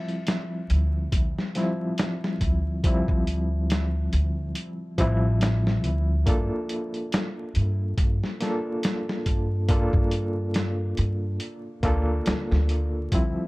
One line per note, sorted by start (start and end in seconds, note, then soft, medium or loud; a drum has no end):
0.00 1.51 F3 medium
0.00 1.51 G3 medium
0.00 1.51 C4 medium
0.00 1.52 E4 medium
0.08 closed hi-hat soft
0.27 snare loud
0.27 closed hi-hat medium
0.70 1.08 D2 medium
0.70 closed hi-hat medium
1.12 1.34 D2 medium
1.12 kick loud
1.12 closed hi-hat medium
1.38 snare soft
1.55 2.79 F3 medium
1.55 2.80 G3 medium
1.55 2.80 C4 medium
1.55 2.81 E4 medium
1.55 snare soft
1.55 closed hi-hat medium
1.98 snare medium
1.98 closed hi-hat medium
2.24 snare soft
2.41 3.04 D2 medium
2.41 kick medium
2.41 closed hi-hat medium
2.84 4.94 F3 medium
2.84 4.94 G3 medium
2.84 4.95 C4 medium
2.84 4.95 E4 medium
2.84 kick loud
2.84 closed hi-hat medium
3.08 4.09 D2 medium
3.08 kick medium
3.27 closed hi-hat medium
3.70 snare loud
3.70 closed hi-hat medium
4.13 4.51 D2 medium
4.13 closed hi-hat medium
4.55 closed hi-hat medium
4.98 5.85 A1 medium
4.98 6.22 F3 medium
4.98 6.23 G3 medium
4.98 6.23 C4 medium
4.98 6.23 E4 loud
4.98 kick medium
4.98 closed hi-hat medium
5.41 snare loud
5.41 closed hi-hat medium
5.67 snare medium
5.84 6.23 D2 medium
5.84 closed hi-hat medium
6.26 6.48 G2 medium
6.26 8.36 A#3 medium
6.26 8.37 D4 medium
6.26 8.37 F4 medium
6.26 8.37 A4 medium
6.26 kick loud
6.26 closed hi-hat medium
6.69 closed hi-hat medium
6.94 closed hi-hat soft
7.12 snare loud
7.12 closed hi-hat medium
7.55 7.94 G2 medium
7.55 closed hi-hat medium
7.98 8.19 G2 medium
7.98 kick loud
7.98 closed hi-hat medium
8.24 snare soft
8.40 9.65 A#3 medium
8.40 9.65 D4 medium
8.40 9.66 F4 medium
8.40 9.66 A4 medium
8.40 snare soft
8.40 closed hi-hat medium
8.83 snare loud
8.83 closed hi-hat medium
9.09 snare soft
9.26 9.89 G2 medium
9.26 kick medium
9.26 closed hi-hat medium
9.69 11.79 A#3 medium
9.69 11.79 D4 medium
9.69 11.80 F4 medium
9.69 11.80 A4 medium
9.69 kick loud
9.69 closed hi-hat medium
9.93 10.94 G2 medium
9.93 kick loud
10.11 closed hi-hat medium
10.54 snare loud
10.54 closed hi-hat medium
10.97 11.37 G2 medium
10.97 closed hi-hat medium
11.40 closed hi-hat medium
11.83 12.22 D2 medium
11.83 13.07 A#3 loud
11.83 13.08 D4 medium
11.83 13.08 F4 medium
11.83 13.09 A4 loud
11.83 kick medium
11.83 closed hi-hat medium
12.26 12.48 D2 medium
12.26 snare loud
12.26 closed hi-hat medium
12.51 13.09 D2 medium
12.51 snare medium
12.69 closed hi-hat medium
13.12 13.34 D2 medium
13.12 13.47 F3 medium
13.12 13.47 G3 medium
13.12 13.47 C4 medium
13.12 13.47 E4 medium
13.12 kick loud
13.12 closed hi-hat medium